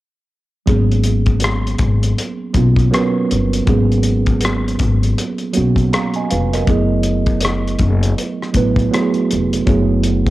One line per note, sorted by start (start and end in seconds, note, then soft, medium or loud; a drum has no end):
0.66 1.76 G#1 medium
0.66 2.00 F#3 medium
0.66 2.01 A#3 medium
0.66 2.01 B3 medium
0.66 2.02 C#4 soft
0.66 2.02 G#4 medium
0.66 kick medium
0.66 closed hi-hat medium
0.92 closed hi-hat soft
1.04 closed hi-hat medium
1.26 kick medium
1.26 closed hi-hat soft
1.40 closed hi-hat medium
1.44 cross-stick medium
1.67 closed hi-hat soft
1.79 2.12 G#1 medium
1.79 kick medium
1.79 closed hi-hat medium
2.03 closed hi-hat soft
2.18 closed hi-hat medium
2.54 2.87 B1 medium
2.54 2.88 F#3 medium
2.54 2.88 A#3 medium
2.54 2.89 B3 medium
2.54 2.89 C#4 soft
2.54 2.90 F4 medium
2.54 kick medium
2.54 closed hi-hat medium
2.77 kick medium
2.77 closed hi-hat soft
2.91 3.59 F#3 medium
2.91 3.60 B3 medium
2.91 3.60 C#4 medium
2.91 3.59 A#4 medium
2.91 3.60 B4 medium
2.91 cross-stick medium
2.91 closed hi-hat medium
3.31 3.63 G1 medium
3.31 closed hi-hat medium
3.53 closed hi-hat medium
3.66 4.76 G#1 medium
3.66 5.00 F#3 medium
3.66 5.00 A#3 medium
3.66 5.01 B3 medium
3.66 5.01 C#4 medium
3.66 5.02 G#4 medium
3.66 kick loud
3.66 closed hi-hat medium
3.92 closed hi-hat soft
4.03 closed hi-hat medium
4.26 kick medium
4.26 closed hi-hat soft
4.41 closed hi-hat medium
4.45 cross-stick medium
4.68 closed hi-hat soft
4.79 5.12 G#1 medium
4.79 kick medium
4.79 closed hi-hat medium
5.03 closed hi-hat soft
5.18 closed hi-hat medium
5.38 closed hi-hat soft
5.53 5.87 F#3 medium
5.53 5.88 A#3 medium
5.53 5.88 B3 medium
5.53 5.89 C#4 medium
5.53 5.89 F#4 medium
5.53 closed hi-hat medium
5.57 5.88 B1 medium
5.76 kick medium
5.76 closed hi-hat soft
5.93 6.14 F5 soft
5.93 6.14 A#5 soft
5.93 cross-stick medium
5.93 closed hi-hat medium
6.14 6.30 D#5 soft
6.14 6.29 G#5 medium
6.14 closed hi-hat soft
6.30 6.63 F1 medium
6.30 6.52 B4 medium
6.30 6.52 F5 medium
6.30 closed hi-hat medium
6.53 6.89 A#4 soft
6.53 6.89 D#5 medium
6.53 cross-stick soft
6.53 closed hi-hat soft
6.66 7.76 F#1 medium
6.66 8.01 F#3 medium
6.66 8.01 A3 medium
6.66 8.02 B3 medium
6.66 8.02 E4 medium
6.66 8.02 G#4 medium
6.66 kick medium
6.66 closed hi-hat medium
7.03 closed hi-hat medium
7.26 kick medium
7.26 closed hi-hat soft
7.40 closed hi-hat medium
7.45 cross-stick medium
7.67 closed hi-hat soft
7.79 8.12 F#1 medium
7.79 kick medium
7.79 closed hi-hat medium
8.03 closed hi-hat soft
8.18 closed hi-hat medium
8.42 cross-stick soft
8.53 8.87 A1 medium
8.53 8.87 F#3 medium
8.53 8.88 A3 medium
8.53 8.88 B3 medium
8.53 8.89 E4 medium
8.53 8.89 B4 medium
8.53 kick medium
8.53 closed hi-hat medium
8.76 kick medium
8.76 closed hi-hat soft
8.91 9.59 F#3 medium
8.91 9.59 A3 medium
8.91 9.60 B3 medium
8.91 9.60 E4 medium
8.91 9.01 F#4 medium
8.91 cross-stick medium
8.91 closed hi-hat medium
9.01 9.64 G#4 medium
9.14 closed hi-hat soft
9.31 9.63 F1 medium
9.31 closed hi-hat medium
9.53 closed hi-hat soft
9.67 10.30 F#1 medium
9.67 10.30 F#3 medium
9.67 10.30 A3 medium
9.67 10.30 B3 medium
9.67 10.30 E4 medium
9.67 10.30 G#4 medium
9.67 kick loud
9.67 closed hi-hat medium
10.04 closed hi-hat medium
10.27 kick medium
10.27 closed hi-hat soft